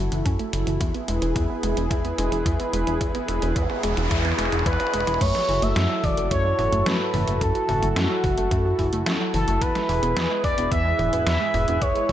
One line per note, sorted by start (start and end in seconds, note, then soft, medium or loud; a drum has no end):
0.00 0.11 F#3 medium
0.00 5.17 E4 medium
0.00 0.77 F#4 medium
0.00 0.77 A4 medium
0.12 0.23 F#1 medium
0.12 0.24 E3 medium
0.12 closed hi-hat medium
0.12 mid tom medium
0.26 0.37 F#2 medium
0.26 0.33 C#4 loud
0.26 kick loud
0.26 closed hi-hat medium
0.39 0.52 A3 medium
0.39 closed hi-hat soft
0.53 0.64 F#1 medium
0.53 0.66 F#3 medium
0.53 closed hi-hat medium
0.53 mid tom medium
0.67 0.78 F#1 loud
0.67 0.79 E3 medium
0.67 closed hi-hat medium
0.80 0.92 E2 loud
0.80 0.88 E4 loud
0.80 5.17 G#4 medium
0.80 5.17 B4 medium
0.80 kick loud
0.80 closed hi-hat medium
0.80 mid tom medium
0.94 1.08 B3 medium
0.94 closed hi-hat soft
1.08 1.20 E1 medium
1.08 1.21 G#3 medium
1.08 closed hi-hat medium
1.08 mid tom medium
1.22 1.33 E1 medium
1.22 1.34 E3 medium
1.22 closed hi-hat medium
1.36 1.47 E2 loud
1.36 1.43 E4 loud
1.36 kick loud
1.36 closed hi-hat medium
1.36 mid tom medium
1.50 1.63 B3 medium
1.63 1.74 E1 loud
1.63 1.76 G#3 medium
1.63 closed hi-hat medium
1.63 mid tom medium
1.77 1.88 E1 loud
1.77 1.89 E3 medium
1.77 closed hi-hat medium
1.91 2.13 E2 medium
1.91 1.98 E4 loud
1.91 kick loud
1.91 closed hi-hat medium
1.91 mid tom medium
2.05 2.18 B3 medium
2.05 closed hi-hat soft
2.18 2.30 E1 medium
2.18 2.31 G#3 medium
2.18 closed hi-hat medium
2.18 mid tom medium
2.32 2.43 E1 medium
2.32 2.44 E3 medium
2.32 closed hi-hat medium
2.46 2.57 E2 medium
2.46 2.53 E4 loud
2.46 kick loud
2.46 closed hi-hat medium
2.46 mid tom medium
2.60 2.73 B3 medium
2.60 closed hi-hat soft
2.73 2.85 E1 medium
2.73 2.86 G#3 medium
2.73 closed hi-hat medium
2.73 mid tom medium
2.87 2.98 E1 loud
2.87 2.99 E3 medium
2.87 closed hi-hat medium
3.01 3.12 E2 medium
3.01 3.08 E4 loud
3.01 kick loud
3.01 closed hi-hat medium
3.01 mid tom medium
3.01 noise sweep medium
3.15 3.28 B3 medium
3.15 closed hi-hat soft
3.15 mid tom medium
3.28 3.40 E1 medium
3.28 3.42 G#3 medium
3.28 closed hi-hat medium
3.28 mid tom medium
3.42 3.53 E1 loud
3.42 3.54 E3 medium
3.42 closed hi-hat medium
3.42 mid tom medium
3.56 3.67 E2 loud
3.56 3.63 E4 loud
3.56 kick loud
3.56 closed hi-hat medium
3.56 mid tom medium
3.70 3.83 B3 medium
3.70 mid tom medium
3.83 3.95 E1 loud
3.83 3.97 G#3 medium
3.83 closed hi-hat medium
3.83 mid tom loud
3.97 4.08 E1 loud
3.97 4.09 E3 medium
3.97 closed hi-hat medium
3.97 mid tom medium
4.11 4.33 E2 medium
4.11 4.18 E4 loud
4.11 kick loud
4.11 closed hi-hat medium
4.11 mid tom loud
4.18 mid tom medium
4.25 4.38 B3 medium
4.25 closed hi-hat soft
4.25 mid tom medium
4.32 mid tom medium
4.38 4.50 E1 medium
4.38 4.52 G#3 medium
4.38 closed hi-hat medium
4.38 mid tom loud
4.45 mid tom medium
4.52 4.64 E1 medium
4.52 4.64 E3 medium
4.52 closed hi-hat medium
4.52 mid tom medium
4.59 mid tom medium
4.66 4.77 E2 loud
4.66 4.73 E4 loud
4.66 5.23 B4 loud
4.66 kick loud
4.66 closed hi-hat medium
4.66 mid tom loud
4.73 mid tom medium
4.80 4.93 B3 medium
4.80 closed hi-hat soft
4.80 mid tom medium
4.87 mid tom medium
4.94 5.05 E1 medium
4.94 5.07 G#3 medium
4.94 closed hi-hat medium
4.94 mid tom loud
5.00 mid tom medium
5.07 5.19 E1 medium
5.07 5.19 E3 medium
5.07 closed hi-hat medium
5.07 mid tom medium
5.14 mid tom medium
5.21 5.32 F#2 medium
5.21 5.33 A3 medium
5.21 12.12 E4 medium
5.21 9.57 F#4 medium
5.21 9.57 A4 medium
5.21 5.64 C#5 loud
5.21 kick loud
5.21 closed hi-hat medium
5.21 crash loud
5.35 5.47 F#3 medium
5.35 snare soft
5.35 closed hi-hat soft
5.49 5.60 F#1 medium
5.49 5.60 E3 loud
5.49 open hi-hat medium
5.62 5.74 F#1 medium
5.62 5.75 A3 medium
5.62 6.05 E5 loud
5.62 closed hi-hat medium
5.76 5.87 F#2 loud
5.76 5.88 A3 medium
5.76 snare loud
5.76 closed hi-hat medium
5.90 6.02 F#3 medium
6.04 6.15 F#1 loud
6.04 6.15 E3 loud
6.04 6.31 D5 loud
6.04 kick loud
6.04 open hi-hat medium
6.17 6.29 F#1 loud
6.17 6.30 A3 medium
6.17 closed hi-hat medium
6.31 6.54 F#2 medium
6.31 6.43 A3 medium
6.31 6.88 C#5 loud
6.31 kick loud
6.31 closed hi-hat medium
6.45 6.57 F#3 medium
6.59 6.70 F#1 medium
6.59 6.71 E3 loud
6.59 open hi-hat medium
6.59 mid tom medium
6.72 6.84 F#1 medium
6.72 6.85 A3 medium
6.72 closed hi-hat medium
6.72 mid tom medium
6.86 6.97 F#2 medium
6.86 6.98 A3 medium
6.86 7.43 B4 loud
6.86 snare loud
6.86 closed hi-hat medium
7.00 7.12 F#3 medium
7.14 7.25 F#1 medium
7.14 7.26 E3 loud
7.14 open hi-hat medium
7.14 mid tom medium
7.27 7.39 F#1 loud
7.27 7.40 A3 medium
7.27 closed hi-hat medium
7.41 7.52 F#2 loud
7.41 7.53 A3 medium
7.41 7.98 A4 loud
7.41 kick loud
7.41 closed hi-hat medium
7.55 7.67 F#3 medium
7.55 closed hi-hat soft
7.69 7.80 F#1 medium
7.69 7.81 E3 loud
7.69 open hi-hat medium
7.69 mid tom medium
7.83 7.94 F#1 medium
7.83 7.95 A3 medium
7.83 closed hi-hat medium
7.96 8.08 F#2 loud
7.96 8.08 A3 medium
7.96 9.07 F#4 medium
7.96 snare loud
7.96 closed hi-hat medium
8.10 8.22 F#3 medium
8.24 8.35 F#1 loud
8.24 8.36 E3 loud
8.24 kick loud
8.24 open hi-hat medium
8.38 8.49 F#1 loud
8.38 8.50 A3 medium
8.38 closed hi-hat medium
8.51 8.74 F#2 medium
8.51 8.63 A3 medium
8.51 kick loud
8.51 closed hi-hat medium
8.65 8.77 F#3 medium
8.79 8.90 F#1 loud
8.79 8.91 E3 loud
8.79 kick medium
8.79 open hi-hat medium
8.93 9.04 F#1 medium
8.93 9.05 A3 medium
8.93 closed hi-hat medium
9.06 9.18 F#2 medium
9.06 9.18 A3 medium
9.06 snare loud
9.06 closed hi-hat medium
9.20 9.32 F#3 medium
9.34 9.45 F#1 medium
9.34 9.46 E3 loud
9.34 9.63 A4 loud
9.34 open hi-hat medium
9.48 9.59 F#1 loud
9.48 9.61 A3 medium
9.48 closed hi-hat medium
9.61 9.73 E2 loud
9.61 9.73 B3 medium
9.61 12.12 G#4 medium
9.61 10.44 B4 loud
9.61 12.12 B4 medium
9.61 kick loud
9.61 closed hi-hat medium
9.75 9.87 G#3 medium
9.75 snare soft
9.75 closed hi-hat soft
9.89 10.00 E1 medium
9.89 10.01 E3 loud
9.89 open hi-hat medium
10.03 10.14 E1 medium
10.03 10.15 B3 medium
10.03 closed hi-hat medium
10.16 10.28 E2 loud
10.16 10.28 B3 medium
10.16 snare loud
10.16 closed hi-hat medium
10.30 10.42 G#3 medium
10.44 10.55 E1 loud
10.44 10.56 E3 loud
10.44 10.70 D5 loud
10.44 kick loud
10.44 open hi-hat medium
10.58 10.69 E1 loud
10.58 10.70 B3 medium
10.58 closed hi-hat medium
10.72 10.94 E2 medium
10.72 10.83 B3 medium
10.72 11.23 E5 loud
10.72 kick loud
10.72 closed hi-hat medium
10.85 10.97 G#3 medium
10.99 11.10 E1 medium
10.99 11.11 E3 loud
10.99 open hi-hat medium
10.99 mid tom medium
11.13 11.24 E1 medium
11.13 11.25 B3 medium
11.13 closed hi-hat medium
11.13 mid tom medium
11.27 11.38 E2 medium
11.27 11.38 B3 medium
11.27 11.83 E5 loud
11.27 snare loud
11.27 closed hi-hat medium
11.40 11.52 G#3 medium
11.54 11.65 E1 medium
11.54 11.66 E3 loud
11.54 open hi-hat medium
11.54 mid tom medium
11.68 11.79 E1 loud
11.68 11.81 B3 medium
11.68 closed hi-hat medium
11.82 11.93 E2 loud
11.82 11.94 B3 medium
11.82 12.12 C#5 loud
11.82 kick loud
11.82 closed hi-hat medium
11.95 12.07 G#3 medium
11.95 closed hi-hat soft
12.09 12.12 E1 medium